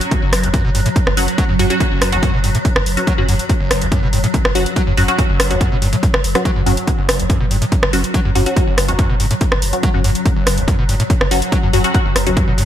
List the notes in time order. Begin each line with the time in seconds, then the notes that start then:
Already playing: F#3
0.01 closed hi-hat
0.11 F#2, kick, closed hi-hat
0.22 F#1
0.33 F#1, cross-stick, open hi-hat
0.43 F#1 F#2, closed hi-hat
0.54 F#2, kick, closed hi-hat
0.65 F#1 B2
0.75 F#1 G2, open hi-hat
0.86 A2, closed hi-hat
0.96 F#2, kick, closed hi-hat
1.07 F#1, cross-stick
1.17 F#1 F#3 C#4 F#4, open hi-hat
1.28 closed hi-hat
1.38 F#3, kick, closed hi-hat
1.49 F#1 F#2
1.59 F#1 F#2 F#3 C#4 F#4, open hi-hat
1.70 F#3 C#4 F#4, closed hi-hat
1.80 F#2 F#3 C#4 F#4, kick, closed hi-hat
1.91 F#1
2.02 F#1, cross-stick, open hi-hat
2.12 F#1 F#2 F#3 C#4 F#4, closed hi-hat
2.23 F#2, kick, closed hi-hat
2.33 F#1 B2
2.44 F#1 G2, open hi-hat
2.55 A2, closed hi-hat
2.65 F#2, kick, closed hi-hat
2.76 F#1, cross-stick
2.86 F#1, open hi-hat
2.97 F#3 C#4 F#4, closed hi-hat
3.07 F#3, kick, closed hi-hat
3.18 F#1 F#2 F#3 C#4 F#4
3.28 F#1 F#2, open hi-hat
3.39 closed hi-hat
3.49 F#2, kick, closed hi-hat
3.60 F#1
3.71 F#1, cross-stick, open hi-hat
3.81 F#1 F#2, closed hi-hat
3.92 F#2, kick, closed hi-hat
4.03 F#1 B2
4.13 F#1 G2, open hi-hat
4.24 A2, closed hi-hat
4.34 F#2, kick, closed hi-hat
4.45 F#1, cross-stick
4.55 F#1 F#3 C#4 F#4, open hi-hat
4.66 closed hi-hat
4.76 F#3, kick, closed hi-hat
4.87 F#1 F#2
4.97 F#1 F#2 F#3 C#4 F#4, open hi-hat
5.08 F#3 C#4 F#4, closed hi-hat
5.18 F#2 F#3 C#4 F#4, kick, closed hi-hat
5.29 F#1
5.40 F#1, cross-stick, open hi-hat
5.50 F#1 F#2 F#3 C#4 F#4, closed hi-hat
5.61 F#2, kick, closed hi-hat
5.72 F#1 B2
5.82 F#1 G2, open hi-hat
5.93 A2, closed hi-hat
6.03 F#2, kick, closed hi-hat
6.14 F#1, cross-stick
6.24 F#1, open hi-hat
6.35 F#3 C#4 F#4, cross-stick, closed hi-hat
6.45 F#3, kick, closed hi-hat
6.56 F#1 F#2
6.66 F#1 F#2 F#3 C#4 F#4, open hi-hat
6.77 closed hi-hat
6.87 F#2 F#3, kick, closed hi-hat
6.98 F#1
7.09 F#1, cross-stick, open hi-hat
7.19 F#1 F#2, closed hi-hat
7.30 F#2, kick, closed hi-hat
7.40 F#1 B2
7.51 F#1 G2, open hi-hat
7.62 A2, closed hi-hat
7.72 F#2, kick, closed hi-hat
7.83 F#1, cross-stick
7.93 F#1 F#3 C#4 F#4, open hi-hat
8.04 closed hi-hat
8.14 F#3, kick, closed hi-hat
8.25 F#1 F#2
8.35 F#1 F#2 F#3 C#4 F#4, open hi-hat
8.46 F#3 C#4 F#4, closed hi-hat
8.56 F#2 F#3 C#4 F#4, kick, closed hi-hat
8.67 F#1
8.78 F#1, cross-stick, open hi-hat
8.88 F#1 F#2 F#3 C#4 F#4, closed hi-hat
8.99 F#2, kick, closed hi-hat
9.10 F#1 B2
9.20 F#1 G2, open hi-hat
9.31 A2, closed hi-hat
9.41 F#2, kick, closed hi-hat
9.52 F#1, cross-stick
9.62 F#1, open hi-hat
9.73 F#3 C#4 F#4, closed hi-hat
9.83 F#3, kick, closed hi-hat
9.94 F#1 F#2 F#3 C#4 F#4
10.04 F#1 F#2, open hi-hat
10.15 closed hi-hat
10.26 F#2, kick, closed hi-hat
10.36 F#1
10.47 F#1, cross-stick, open hi-hat
10.57 F#1 F#2, closed hi-hat
10.68 F#2, kick, closed hi-hat
10.79 F#1 B2
10.89 F#1 G2, open hi-hat
11.00 A2, closed hi-hat
11.10 F#2, kick, closed hi-hat
11.21 F#1, cross-stick
11.31 F#1 F#3 C#4 F#4, open hi-hat
11.42 closed hi-hat
11.52 F#3, kick, closed hi-hat
11.63 F#1 F#2
11.73 F#1 F#2 F#3 C#4 F#4, open hi-hat
11.84 F#3 C#4 F#4, closed hi-hat
11.94 F#2 F#3 C#4 F#4, kick, closed hi-hat
12.05 F#1
12.16 F#1, cross-stick, open hi-hat
12.26 F#1 F#2 F#3 C#4 F#4, closed hi-hat
12.37 F#2, kick, closed hi-hat
12.47 F#1 B2
12.58 F#1 G2, open hi-hat